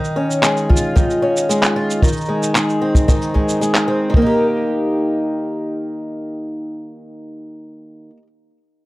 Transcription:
Already playing: twelve-string acoustic guitar D#3
0.04 shaker
0.16 twelve-string acoustic guitar C#4
0.31 shaker
0.43 twelve-string acoustic guitar G#3, clap, shaker
0.57 shaker
0.69 twelve-string acoustic guitar F4, kick
0.77 shaker
0.96 twelve-string acoustic guitar D#3, kick, shaker
1.10 shaker
1.22 twelve-string acoustic guitar C#4
1.37 shaker
1.49 twelve-string acoustic guitar G#3, shaker
1.63 clap, shaker
1.76 twelve-string acoustic guitar F4
1.90 shaker
2.02 twelve-string acoustic guitar D#3, kick, shaker
2.08 shaker
2.12 shaker
2.17 shaker
2.21 shaker
2.25 twelve-string acoustic guitar G#3, shaker
2.43 shaker
2.55 twelve-string acoustic guitar G#3, clap, shaker
2.69 shaker
2.82 twelve-string acoustic guitar C4
2.95 kick, shaker
3.08 twelve-string acoustic guitar D#3, kick, shaker
3.22 shaker
3.34 twelve-string acoustic guitar G#3, kick
3.49 shaker
3.61 twelve-string acoustic guitar G#3, shaker
3.75 clap, shaker
3.88 twelve-string acoustic guitar C4
4.10 twelve-string acoustic guitar D#3
4.14 twelve-string acoustic guitar A#3, kick
4.22 twelve-string acoustic guitar D#4
4.27 twelve-string acoustic guitar G4

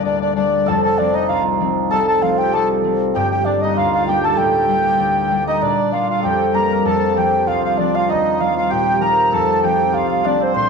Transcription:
Already playing: harp D1 G3 A#3 C4 D4
0.05 harp D2, accordion D4, flute D5
0.21 accordion D4, flute D5
0.35 harp G3 A#3 D4, accordion D4, flute D5
0.66 harp F1 F2, hammered dulcimer A4, accordion A4, flute A5
0.83 accordion A4, flute A5
0.97 harp F3 A3 C4, hammered dulcimer D4, accordion D4, flute D5
1.13 accordion D#4, hammered dulcimer D#4, flute D#5
1.28 harp C2, accordion F4, hammered dulcimer F4, flute F5
1.60 harp F3 A3 C4
1.91 harp C2, accordion A4, hammered dulcimer A4, flute A5
2.07 accordion A4, flute A5
2.21 harp F3 A3 C4, hammered dulcimer F4, accordion F4, flute F5
2.38 hammered dulcimer G4, accordion G4, flute G5
2.53 harp C2, hammered dulcimer A4, accordion A4, flute A5
2.84 harp F3 A3 C4
3.15 harp G1 G2, accordion G4, hammered dulcimer G4, flute G5
3.31 accordion G4, hammered dulcimer G4, flute G5
3.45 harp G3 A#3 D4, accordion D4, hammered dulcimer D4, flute D5
3.62 accordion D#4, hammered dulcimer D#4, flute D#5
3.76 harp D2, hammered dulcimer F4, accordion F4, flute F5
3.92 hammered dulcimer F4, accordion F4, flute F5
4.07 harp G3 A#3 D4, accordion G4, hammered dulcimer G4, flute G5
4.23 accordion A4, hammered dulcimer A4, flute A5
4.37 harp D1 D2, accordion G4, hammered dulcimer G4, flute G5
4.68 harp G3 A#3 D4
5.00 harp D2
5.30 harp G3 A#3 D4
5.47 hammered dulcimer D#4, accordion D#4, flute D#5
5.62 harp A#2, hammered dulcimer D4, accordion D4, flute D5
5.92 harp G3 A#3 D4, accordion F4, hammered dulcimer F4, flute F5
6.08 hammered dulcimer F4, accordion F4, flute F5
6.20 hammered dulcimer G4 A4, accordion G4, flute G5
6.24 harp F2
6.39 hammered dulcimer A4
6.54 harp G3 A#3 D4, accordion A#4, hammered dulcimer A#4, flute A#5
6.72 hammered dulcimer A#4
6.85 harp F2, hammered dulcimer A4, accordion A4, flute A5
7.16 harp F3 A3 C4, accordion G4, hammered dulcimer G4, flute G5
7.33 hammered dulcimer G4
7.47 harp C2, hammered dulcimer F4, accordion F4, flute F5
7.63 hammered dulcimer F4, accordion F4, flute F5
7.77 harp F3 A3 C4, hammered dulcimer D4, accordion D4, flute D5
7.94 accordion F4, hammered dulcimer F4, flute F5
8.08 harp D#2, accordion D#4, hammered dulcimer D#4, flute D#5
8.40 harp F3 G3 D#4, accordion F4, hammered dulcimer F4, flute F5
8.56 hammered dulcimer F4, accordion F4, flute F5
8.70 harp A#2, accordion G4, hammered dulcimer G4, flute G5
8.81 hammered dulcimer G4
8.92 hammered dulcimer G4
8.99 harp F3 G3, accordion A#4, hammered dulcimer A#4, flute A#5
9.04 harp D#4
9.32 harp F2, hammered dulcimer A4, accordion A4, flute A5
9.63 harp F3 A3 C4, accordion G4, hammered dulcimer G4, flute G5
9.79 hammered dulcimer G4
9.92 harp C2, hammered dulcimer F4, accordion F4, flute F5
10.10 hammered dulcimer F4, flute F5
10.24 harp F3 A3 C4, hammered dulcimer D4, accordion D4, flute D5
10.40 hammered dulcimer C4, accordion C4, flute C5
10.54 harp A#2, hammered dulcimer C5, accordion C5, flute C6

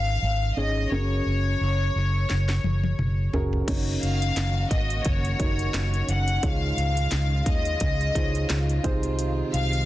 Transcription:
Already playing: fingered electric bass G#1, violin section F5
0.22 fingered electric bass G#1
0.57 fingered electric bass G#1, upright piano C#4 D#4 G#4 C#5, violin section D#5
0.91 fingered electric bass F#1, upright piano C#3 C#4 F#4 G#4 A#4, violin section C#5
1.26 fingered electric bass F#1
1.61 fingered electric bass F#1
1.96 fingered electric bass F#1
2.30 fingered electric bass F#1, snare
2.49 snare
2.64 fingered electric bass F#1, high tom
2.84 high tom
2.99 fingered electric bass F#1, mid tom
3.33 fingered electric bass F#1, upright piano C#4 F#4 G#4 A#4, floor tom
3.53 floor tom
3.67 fingered electric bass F#1, upright piano C#3 D#4 F#4 A#4 C#5, string section D#3 A#3 C#4 F#4, kick, closed hi-hat, crash
4.02 fingered electric bass F#1, violin section F5, closed hi-hat
4.22 closed hi-hat
4.36 fingered electric bass F#1, snare, closed hi-hat
4.71 fingered electric bass G#1, violin section D#5, kick, closed hi-hat
4.90 closed hi-hat
5.05 fingered electric bass F#1, violin section C#5, kick, closed hi-hat
5.25 closed hi-hat
5.39 fingered electric bass F#1, upright piano D#4 F#4 A#4 C#5, kick, closed hi-hat
5.59 closed hi-hat
5.74 fingered electric bass F#1, snare, closed hi-hat
5.94 closed hi-hat
6.08 fingered electric bass F#1, violin section F#5, closed hi-hat
6.28 closed hi-hat
6.43 upright piano G#2 D#4 F4 G#4 C#5, string section G#3 F4, violin section F5, kick, closed hi-hat
6.77 fingered electric bass C#2, closed hi-hat
6.97 closed hi-hat
7.11 fingered electric bass C#2, snare, closed hi-hat
7.46 fingered electric bass D#2, violin section D#5, kick, closed hi-hat
7.65 closed hi-hat
7.80 fingered electric bass C#2, kick, closed hi-hat
8.01 closed hi-hat
8.15 fingered electric bass C#2, upright piano D#4 F4 G#4 C5, kick, closed hi-hat
8.22 upright piano C#5
8.35 closed hi-hat
8.50 fingered electric bass C#2, snare, closed hi-hat
8.69 closed hi-hat
8.83 upright piano C3 D#4 F4 G#4 C5, string section D#3 G#3 C4, kick, closed hi-hat
9.03 closed hi-hat
9.19 closed hi-hat
9.54 fingered electric bass C2, violin section F5, closed hi-hat
9.73 closed hi-hat

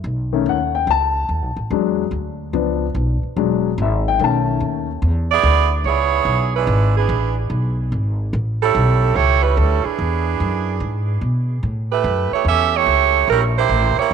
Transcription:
0.04 upright bass B1
0.33 grand piano D#3 A3 C#4
0.46 upright bass D#2, grand piano F#5
0.75 grand piano G5
0.87 upright bass C#2, grand piano A5
1.29 upright bass D#2
1.42 upright bass B1
1.56 upright bass A1
1.70 upright bass E2, grand piano F#3 G#3 D4
2.11 upright bass D2
2.53 upright bass C#2, grand piano F3 B3 D4
2.95 upright bass B1
3.23 muted upright bass stroke
3.36 upright bass E1, grand piano F#3 G#3 D4
3.78 upright bass G#1, grand piano E5
4.08 grand piano G5
4.19 upright bass B1, grand piano D#3 A3 C#4
4.24 grand piano A5
4.60 upright bass D#2
5.02 upright bass E2
5.31 saxophone section B3 E4 G#4 D5
5.43 upright bass D2
5.84 upright bass C#2, saxophone section B3 E4 G#4 C#5
6.25 upright bass B1
6.55 saxophone section G#3 D4 E4 B4
6.67 upright bass G#1
6.97 saxophone section E3 B3 D4 G#4
7.09 upright bass A1
7.50 upright bass B1
7.92 upright bass G#1
8.33 upright bass A1
8.62 saxophone section G3 C#4 E4 A4
8.75 upright bass B1
9.15 upright bass C#2, saxophone section A3 E4 G4 C#5
9.43 saxophone section G3 C#4 E4 B4
9.57 upright bass D2, saxophone section G3 C#4 E4 A4
9.84 saxophone section E3 B3 D4 G#4, muted upright bass stroke
9.99 upright bass E2
10.40 upright bass F#2
10.80 upright bass G#2
11.21 upright bass B2
11.63 upright bass A2
11.92 saxophone section A3 E4 G4 B4
12.04 upright bass F#2
12.31 saxophone section A3 E4 G4 C#5, muted upright bass stroke
12.45 upright bass E2, saxophone section C#4 G4 A4 E5
12.76 saxophone section A3 E4 G4 C#5
12.86 upright bass C#2
13.28 upright bass A#1, saxophone section G3 C#4 E4 A#4
13.58 saxophone section A#3 E4 G4 C5
13.69 upright bass A1
13.97 saxophone section A#3 E4 G4 C#5, muted upright bass stroke

